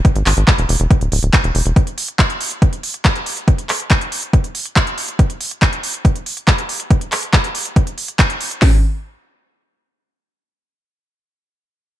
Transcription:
<<
  \new Staff \with { instrumentName = "Analog synth bass" } { \clef bass \time 4/4 \tempo 4 = 140 r16 gis,,16 gis,,16 gis,,16 r16 e,,16 e,,16 e,,16 r16 d,,16 d,,16 d,,16 r16 e,,16 e,,16 e,,16 | r1 | r1 | r1 |
r1 | r1 | r1 | }
  \new DrumStaff \with { instrumentName = "Drums" } \drummode { \time 4/4 <hh bd>16 hh16 <hc hho>16 hh16 <hc hh bd>16 hh16 hho16 hh16 <hh bd>16 hh16 hho16 hh16 <hc hh bd>16 hh16 hho16 hh16 | <hh bd>16 hh16 hho16 hh16 <hc hh bd>16 hh16 hho16 hh16 <hh bd>16 hh16 hho16 hh16 <hc hh bd>16 hh16 hho16 hh16 | <hh bd>16 hh16 <hc hho>16 hh16 <hc hh bd>16 hh16 hho16 hh16 <hh bd>16 hh16 hho16 hh16 <hc hh bd>16 hh16 hho16 hh16 | <hh bd>16 hh16 hho16 hh16 <hc hh bd>16 hh16 hho16 hh16 <hh bd>16 hh16 hho16 hh16 <hc hh bd>16 hh16 hho16 hh16 |
<hh bd>16 hh16 <hc hho>16 hh16 <hc hh bd>16 hh16 hho16 hh16 <hh bd>16 hh16 hho16 hh16 <hc hh bd>16 hh16 hho16 hh16 | <hho bd sn>4 r4 r4 r4 | r4 r4 r4 r4 | }
>>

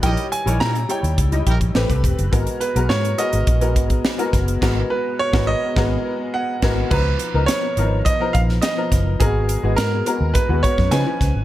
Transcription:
<<
  \new Staff \with { instrumentName = "Grand piano" } { \time 4/4 \key gis \dorian \tempo 4 = 105 g''8 gis''8 ais''8 g''2 r8 | r8 b'8 cis''8 dis''2 r8 | r8 b'8 cis''8 dis''4. fis''4 | b'4 cis''4 dis''8 eis''8 dis''4 |
gis'4 ais'4 b'8 cis''8 gis''4 | }
  \new Staff \with { instrumentName = "Horn section" } { \time 4/4 \key gis \dorian <g' ais' dis''>8 r16 <g' ais' cis''>16 <e' g' ais'>8 r4 <e' g' ais'>16 r4 r16 | r1 | r1 | r1 |
r1 | }
  \new Staff \with { instrumentName = "Grand piano" } { \time 4/4 \key gis \dorian <g dis' e' cis''>8 r16 <g dis' e' cis''>8 r16 <g dis' e' cis''>8 r16 <g dis' e' dis''>8. <a c' g' b'>16 <a c' g' b'>8 r16 | <gis b fis' ais'>8 r16 <gis b fis' ais'>8 r16 <gis b fis' ais'>8 r16 <gis b fis' ais'>8. r16 <gis b fis' ais'>8 r16 | <gis b fis' ais'>8 r8. <gis b fis' ais'>8 r16 <gis b fis' ais'>8 r4 <gis b fis' ais'>8 | <eis b dis' ais''>8 r16 <eis b dis' ais'>8 r16 <eis b dis' ais'>8 r16 <eis b dis' ais'>8. r16 <eis b dis' ais'>8 r16 |
<gis b fis' ais'>8 r16 <gis b fis' gis'>8 r16 <gis b fis' ais'>8 r16 <gis b fis' b'>8. <eis cis' dis' b'>16 <eis cis' dis' b'>8 r16 | }
  \new Staff \with { instrumentName = "Fingered electric bass" } { \clef bass \time 4/4 \key gis \dorian ais,,16 r8 ais,,16 ais,8 r16 dis,16 cis,8 ais,,8 a,,16 c,16 e,,16 fis,,16 | gis,,16 r8 b,,16 gis,8 r16 gis,,16 ais,,8 gis,,8 r8 fis,,8 | gis,,8 r8. gis,,8 r16 gis,,8 r4 gis,,8 | cis,8 r16 cis,16 r8 gis,,8 r8 ais,,8 r8 fis,,8 |
gis,,8. gis,,16 gis,8 r16 dis,16 r16 dis,16 r16 fis,16 cis16 r16 cis,16 gis,,16 | }
  \new DrumStaff \with { instrumentName = "Drums" } \drummode { \time 4/4 <hh bd>16 hh16 hh16 hh16 sn16 hh16 hh16 hh16 <hh bd>16 hh16 <hh bd>16 <hh bd>16 sn16 <hh bd>16 <hh bd>16 hh16 | <hh bd>16 hh16 hh16 hh16 sn16 hh16 hh16 hh16 <hh bd>16 hh16 <hh bd>16 <hh bd>16 sn16 hh16 <hh bd sn>16 hh16 | <cymc bd sn>4 r16 <bd sn>8. <bd sn>4 r8 <cymc bd sn>8 | <cymc bd>8 hh8 <hh sn>8 hh8 <hh bd>8 <hh bd>16 sn16 <hh sn>8 <hh bd sn>8 |
<hh bd>8 hh8 <hh sn>8 hh8 <hh bd>8 <hh bd>16 <bd sn>16 <hh sn>8 <hh bd sn>8 | }
>>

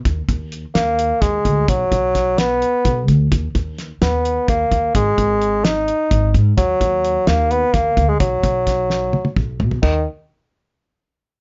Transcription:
<<
  \new Staff \with { instrumentName = "Bassoon" } { \time 7/8 \key ees \minor \tempo 4 = 129 r4. bes4 aes4 | fis4. b4. r8 | r4. ces'4 bes4 | aes4. ees'4. r8 |
ges4. bes8 ces'8 bes8. aes16 | fis2~ fis8 r4 | ees8 r2. | }
  \new Staff \with { instrumentName = "Upright bass" } { \clef bass \time 7/8 \key ees \minor ees,8 ees,4 ees,4 ees,8 d,8 | b,,8 b,,2 b,,8 d,8 | ees,8 ees,4 ees,4 ees,8 ees,8 | aes,,8 aes,,2 aes,,8 aes,8 |
ees,8 ees,4 ees,4 ees,8 d,8 | b,,8 b,,2 b,,8 b,8 | ees,8 r2. | }
  \new DrumStaff \with { instrumentName = "Drums" } \drummode { \time 7/8 <hh bd>8 <hh bd>8 hh8 <hh sn>8 hh8 <hh bd sn>8 <hh bd>8 | <hh bd>8 <hh bd>8 <hh bd sn>8 <hh sn>8 hh8 <hh bd>8 <hh bd>8 | <hh bd>8 <hh bd>8 <hh sn>8 <hh sn>8 hh8 <hh bd>8 <hh bd>8 | <hh bd>8 <hh bd>8 hh8 <hh sn>8 hh8 <hh bd>8 <hh bd>8 |
<hh bd>8 <hh bd>8 hh8 <hh sn>8 hh8 <hh bd sn>8 <hh bd>8 | <hh bd>8 <hh bd>8 <hh bd sn>8 sn8 tommh16 tommh16 <bd toml>8 tomfh16 tomfh16 | <cymc bd>4. r4 r4 | }
>>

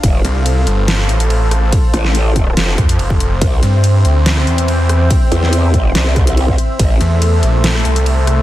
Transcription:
<<
  \new Staff \with { instrumentName = "Supersaw synth" } { \time 4/4 \key c \mixolydian \tempo 4 = 142 << { a'1~ | a'1 | <c' g''>1~ | <c' g''>1 |
<a a'>1 | } \\ { <c'' f''>1~ | <c'' f''>1 | e''1~ | e''1~ |
e''1 | } >> }
  \new Staff \with { instrumentName = "Detuned saw bass" } { \clef bass \time 4/4 \key c \mixolydian r8 c,4 g,,4 a,,4. | r2 r8 f,8 f,,4 | r8 g,4 d,4 e,4. | r1 |
r8 e,4 bes,,4 c,4. | }
  \new Staff \with { instrumentName = "Wobble bass" } { \clef bass \time 4/4 \key c \mixolydian f,,8 r2. r8 | r8 a,,4. f,,8 r4. | c,8 r2. r8 | r8 e,4. c,4. r8 |
a,,8 r2. r8 | }
  \new DrumStaff \with { instrumentName = "Drums" } \drummode { \time 4/4 <hh bd cymr>8 hh8 <hh cymr>8 hh8 <hh cymr sn>16 ss16 hh16 hh16 cymr8 <hh ss>8 | <hh bd cymr>8 <hh ss>16 sn16 <hh cymr>8 <hh bd>8 <hh cymr sn>8 <hh bd ss>16 hh16 cymr16 bd16 hh8 | <hh bd cymr>8 hh8 <hh cymr>8 hh8 <hh cymr sn>16 ss16 hh16 hh16 cymr8 <hh ss>8 | <hh bd cymr>8 hh16 sn16 <hh cymr>8 <hh bd>8 <hh cymr sn>8 <hh bd ss>16 hh16 cymr16 bd16 hh8 |
<hh bd cymr>8 hh8 <hh cymr>8 hh8 <hh cymr sn>16 ss16 hh16 hh16 cymr8 <hh ss>8 | }
>>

